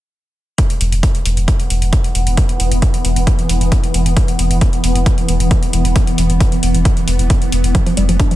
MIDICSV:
0, 0, Header, 1, 5, 480
1, 0, Start_track
1, 0, Tempo, 447761
1, 626, Time_signature, 4, 2, 24, 8
1, 8960, End_track
2, 0, Start_track
2, 0, Title_t, "Synth drone"
2, 0, Program_c, 0, 95
2, 625, Note_on_c, 0, 52, 74
2, 626, Note_on_c, 0, 59, 77
2, 8960, Note_off_c, 0, 52, 0
2, 8960, Note_off_c, 0, 59, 0
2, 8960, End_track
3, 0, Start_track
3, 0, Title_t, "Synth arpeggio sound"
3, 0, Program_c, 1, 84
3, 8306, Note_on_c, 1, 53, 80
3, 8360, Note_off_c, 1, 53, 0
3, 8431, Note_on_c, 1, 53, 75
3, 8480, Note_off_c, 1, 53, 0
3, 8546, Note_on_c, 1, 55, 78
3, 8600, Note_off_c, 1, 55, 0
3, 8671, Note_on_c, 1, 53, 78
3, 8720, Note_off_c, 1, 53, 0
3, 8785, Note_on_c, 1, 62, 82
3, 8839, Note_off_c, 1, 62, 0
3, 8912, Note_on_c, 1, 53, 75
3, 8960, Note_off_c, 1, 53, 0
3, 8960, End_track
4, 0, Start_track
4, 0, Title_t, "Sub bass"
4, 0, Program_c, 2, 38
4, 865, Note_on_c, 2, 28, 97
4, 983, Note_off_c, 2, 28, 0
4, 990, Note_on_c, 2, 28, 77
4, 1103, Note_off_c, 2, 28, 0
4, 1344, Note_on_c, 2, 28, 99
4, 1463, Note_off_c, 2, 28, 0
4, 1470, Note_on_c, 2, 28, 76
4, 1583, Note_off_c, 2, 28, 0
4, 1824, Note_on_c, 2, 28, 98
4, 1944, Note_off_c, 2, 28, 0
4, 1951, Note_on_c, 2, 28, 83
4, 2063, Note_off_c, 2, 28, 0
4, 2304, Note_on_c, 2, 28, 99
4, 2423, Note_off_c, 2, 28, 0
4, 2430, Note_on_c, 2, 28, 82
4, 2543, Note_off_c, 2, 28, 0
4, 2785, Note_on_c, 2, 28, 97
4, 2904, Note_off_c, 2, 28, 0
4, 2910, Note_on_c, 2, 28, 77
4, 3023, Note_off_c, 2, 28, 0
4, 3265, Note_on_c, 2, 28, 100
4, 3384, Note_off_c, 2, 28, 0
4, 3390, Note_on_c, 2, 28, 76
4, 3503, Note_off_c, 2, 28, 0
4, 3745, Note_on_c, 2, 28, 98
4, 3864, Note_off_c, 2, 28, 0
4, 3871, Note_on_c, 2, 28, 84
4, 3983, Note_off_c, 2, 28, 0
4, 4226, Note_on_c, 2, 28, 97
4, 4345, Note_off_c, 2, 28, 0
4, 4351, Note_on_c, 2, 28, 81
4, 4463, Note_off_c, 2, 28, 0
4, 4706, Note_on_c, 2, 28, 97
4, 4825, Note_off_c, 2, 28, 0
4, 4831, Note_on_c, 2, 28, 77
4, 4944, Note_off_c, 2, 28, 0
4, 5185, Note_on_c, 2, 28, 104
4, 5304, Note_off_c, 2, 28, 0
4, 5311, Note_on_c, 2, 28, 81
4, 5423, Note_off_c, 2, 28, 0
4, 5666, Note_on_c, 2, 28, 94
4, 5784, Note_off_c, 2, 28, 0
4, 5791, Note_on_c, 2, 28, 81
4, 5903, Note_off_c, 2, 28, 0
4, 6145, Note_on_c, 2, 28, 100
4, 6264, Note_off_c, 2, 28, 0
4, 6270, Note_on_c, 2, 28, 83
4, 6383, Note_off_c, 2, 28, 0
4, 6624, Note_on_c, 2, 28, 97
4, 6744, Note_off_c, 2, 28, 0
4, 6750, Note_on_c, 2, 28, 77
4, 6863, Note_off_c, 2, 28, 0
4, 7105, Note_on_c, 2, 28, 99
4, 7224, Note_off_c, 2, 28, 0
4, 7230, Note_on_c, 2, 28, 77
4, 7343, Note_off_c, 2, 28, 0
4, 7586, Note_on_c, 2, 28, 101
4, 7704, Note_off_c, 2, 28, 0
4, 7711, Note_on_c, 2, 28, 85
4, 7823, Note_off_c, 2, 28, 0
4, 8066, Note_on_c, 2, 28, 94
4, 8185, Note_off_c, 2, 28, 0
4, 8192, Note_on_c, 2, 28, 82
4, 8304, Note_off_c, 2, 28, 0
4, 8546, Note_on_c, 2, 29, 94
4, 8665, Note_off_c, 2, 29, 0
4, 8672, Note_on_c, 2, 29, 77
4, 8784, Note_off_c, 2, 29, 0
4, 8960, End_track
5, 0, Start_track
5, 0, Title_t, "Drums"
5, 625, Note_on_c, 9, 42, 82
5, 626, Note_on_c, 9, 36, 114
5, 732, Note_off_c, 9, 42, 0
5, 733, Note_off_c, 9, 36, 0
5, 751, Note_on_c, 9, 42, 54
5, 858, Note_off_c, 9, 42, 0
5, 866, Note_on_c, 9, 42, 85
5, 973, Note_off_c, 9, 42, 0
5, 991, Note_on_c, 9, 42, 50
5, 1098, Note_off_c, 9, 42, 0
5, 1105, Note_on_c, 9, 36, 116
5, 1106, Note_on_c, 9, 42, 81
5, 1213, Note_off_c, 9, 36, 0
5, 1213, Note_off_c, 9, 42, 0
5, 1231, Note_on_c, 9, 42, 55
5, 1338, Note_off_c, 9, 42, 0
5, 1346, Note_on_c, 9, 42, 87
5, 1453, Note_off_c, 9, 42, 0
5, 1471, Note_on_c, 9, 42, 51
5, 1578, Note_off_c, 9, 42, 0
5, 1585, Note_on_c, 9, 36, 120
5, 1586, Note_on_c, 9, 42, 81
5, 1693, Note_off_c, 9, 36, 0
5, 1693, Note_off_c, 9, 42, 0
5, 1711, Note_on_c, 9, 42, 52
5, 1818, Note_off_c, 9, 42, 0
5, 1826, Note_on_c, 9, 42, 78
5, 1933, Note_off_c, 9, 42, 0
5, 1951, Note_on_c, 9, 42, 52
5, 2058, Note_off_c, 9, 42, 0
5, 2065, Note_on_c, 9, 42, 81
5, 2066, Note_on_c, 9, 36, 122
5, 2173, Note_off_c, 9, 36, 0
5, 2173, Note_off_c, 9, 42, 0
5, 2191, Note_on_c, 9, 42, 52
5, 2298, Note_off_c, 9, 42, 0
5, 2305, Note_on_c, 9, 42, 81
5, 2413, Note_off_c, 9, 42, 0
5, 2431, Note_on_c, 9, 42, 53
5, 2538, Note_off_c, 9, 42, 0
5, 2545, Note_on_c, 9, 42, 84
5, 2546, Note_on_c, 9, 36, 115
5, 2653, Note_off_c, 9, 36, 0
5, 2653, Note_off_c, 9, 42, 0
5, 2671, Note_on_c, 9, 42, 55
5, 2778, Note_off_c, 9, 42, 0
5, 2785, Note_on_c, 9, 42, 81
5, 2892, Note_off_c, 9, 42, 0
5, 2911, Note_on_c, 9, 42, 54
5, 3018, Note_off_c, 9, 42, 0
5, 3026, Note_on_c, 9, 36, 118
5, 3026, Note_on_c, 9, 42, 81
5, 3133, Note_off_c, 9, 36, 0
5, 3133, Note_off_c, 9, 42, 0
5, 3151, Note_on_c, 9, 42, 57
5, 3258, Note_off_c, 9, 42, 0
5, 3266, Note_on_c, 9, 42, 80
5, 3373, Note_off_c, 9, 42, 0
5, 3391, Note_on_c, 9, 42, 53
5, 3499, Note_off_c, 9, 42, 0
5, 3506, Note_on_c, 9, 36, 121
5, 3506, Note_on_c, 9, 42, 80
5, 3613, Note_off_c, 9, 36, 0
5, 3613, Note_off_c, 9, 42, 0
5, 3631, Note_on_c, 9, 42, 51
5, 3738, Note_off_c, 9, 42, 0
5, 3746, Note_on_c, 9, 42, 79
5, 3853, Note_off_c, 9, 42, 0
5, 3872, Note_on_c, 9, 42, 50
5, 3979, Note_off_c, 9, 42, 0
5, 3986, Note_on_c, 9, 36, 119
5, 3986, Note_on_c, 9, 42, 82
5, 4093, Note_off_c, 9, 36, 0
5, 4093, Note_off_c, 9, 42, 0
5, 4112, Note_on_c, 9, 42, 52
5, 4219, Note_off_c, 9, 42, 0
5, 4227, Note_on_c, 9, 42, 83
5, 4334, Note_off_c, 9, 42, 0
5, 4352, Note_on_c, 9, 42, 53
5, 4459, Note_off_c, 9, 42, 0
5, 4466, Note_on_c, 9, 36, 119
5, 4466, Note_on_c, 9, 42, 78
5, 4573, Note_off_c, 9, 36, 0
5, 4573, Note_off_c, 9, 42, 0
5, 4591, Note_on_c, 9, 42, 53
5, 4698, Note_off_c, 9, 42, 0
5, 4706, Note_on_c, 9, 42, 81
5, 4813, Note_off_c, 9, 42, 0
5, 4831, Note_on_c, 9, 42, 50
5, 4938, Note_off_c, 9, 42, 0
5, 4946, Note_on_c, 9, 36, 125
5, 4946, Note_on_c, 9, 42, 79
5, 5053, Note_off_c, 9, 42, 0
5, 5054, Note_off_c, 9, 36, 0
5, 5071, Note_on_c, 9, 42, 55
5, 5178, Note_off_c, 9, 42, 0
5, 5186, Note_on_c, 9, 42, 80
5, 5293, Note_off_c, 9, 42, 0
5, 5311, Note_on_c, 9, 42, 54
5, 5419, Note_off_c, 9, 42, 0
5, 5426, Note_on_c, 9, 36, 126
5, 5426, Note_on_c, 9, 42, 79
5, 5533, Note_off_c, 9, 36, 0
5, 5533, Note_off_c, 9, 42, 0
5, 5551, Note_on_c, 9, 42, 49
5, 5658, Note_off_c, 9, 42, 0
5, 5666, Note_on_c, 9, 42, 77
5, 5773, Note_off_c, 9, 42, 0
5, 5791, Note_on_c, 9, 42, 52
5, 5898, Note_off_c, 9, 42, 0
5, 5906, Note_on_c, 9, 36, 123
5, 5906, Note_on_c, 9, 42, 79
5, 6013, Note_off_c, 9, 36, 0
5, 6013, Note_off_c, 9, 42, 0
5, 6031, Note_on_c, 9, 42, 52
5, 6138, Note_off_c, 9, 42, 0
5, 6146, Note_on_c, 9, 42, 84
5, 6253, Note_off_c, 9, 42, 0
5, 6271, Note_on_c, 9, 42, 54
5, 6378, Note_off_c, 9, 42, 0
5, 6386, Note_on_c, 9, 36, 118
5, 6386, Note_on_c, 9, 42, 78
5, 6493, Note_off_c, 9, 36, 0
5, 6493, Note_off_c, 9, 42, 0
5, 6511, Note_on_c, 9, 42, 54
5, 6618, Note_off_c, 9, 42, 0
5, 6626, Note_on_c, 9, 42, 78
5, 6733, Note_off_c, 9, 42, 0
5, 6751, Note_on_c, 9, 42, 48
5, 6858, Note_off_c, 9, 42, 0
5, 6866, Note_on_c, 9, 36, 122
5, 6866, Note_on_c, 9, 42, 70
5, 6973, Note_off_c, 9, 36, 0
5, 6973, Note_off_c, 9, 42, 0
5, 6991, Note_on_c, 9, 42, 53
5, 7098, Note_off_c, 9, 42, 0
5, 7106, Note_on_c, 9, 42, 79
5, 7213, Note_off_c, 9, 42, 0
5, 7231, Note_on_c, 9, 42, 53
5, 7338, Note_off_c, 9, 42, 0
5, 7346, Note_on_c, 9, 36, 121
5, 7346, Note_on_c, 9, 42, 78
5, 7453, Note_off_c, 9, 36, 0
5, 7453, Note_off_c, 9, 42, 0
5, 7471, Note_on_c, 9, 42, 51
5, 7578, Note_off_c, 9, 42, 0
5, 7585, Note_on_c, 9, 42, 75
5, 7693, Note_off_c, 9, 42, 0
5, 7711, Note_on_c, 9, 42, 50
5, 7818, Note_off_c, 9, 42, 0
5, 7826, Note_on_c, 9, 36, 119
5, 7826, Note_on_c, 9, 42, 74
5, 7933, Note_off_c, 9, 36, 0
5, 7933, Note_off_c, 9, 42, 0
5, 7951, Note_on_c, 9, 42, 51
5, 8058, Note_off_c, 9, 42, 0
5, 8066, Note_on_c, 9, 42, 75
5, 8173, Note_off_c, 9, 42, 0
5, 8191, Note_on_c, 9, 42, 49
5, 8298, Note_off_c, 9, 42, 0
5, 8306, Note_on_c, 9, 36, 110
5, 8306, Note_on_c, 9, 42, 73
5, 8413, Note_off_c, 9, 36, 0
5, 8413, Note_off_c, 9, 42, 0
5, 8431, Note_on_c, 9, 42, 52
5, 8538, Note_off_c, 9, 42, 0
5, 8546, Note_on_c, 9, 42, 77
5, 8653, Note_off_c, 9, 42, 0
5, 8671, Note_on_c, 9, 42, 48
5, 8778, Note_off_c, 9, 42, 0
5, 8786, Note_on_c, 9, 36, 119
5, 8786, Note_on_c, 9, 42, 67
5, 8893, Note_off_c, 9, 36, 0
5, 8893, Note_off_c, 9, 42, 0
5, 8911, Note_on_c, 9, 42, 52
5, 8960, Note_off_c, 9, 42, 0
5, 8960, End_track
0, 0, End_of_file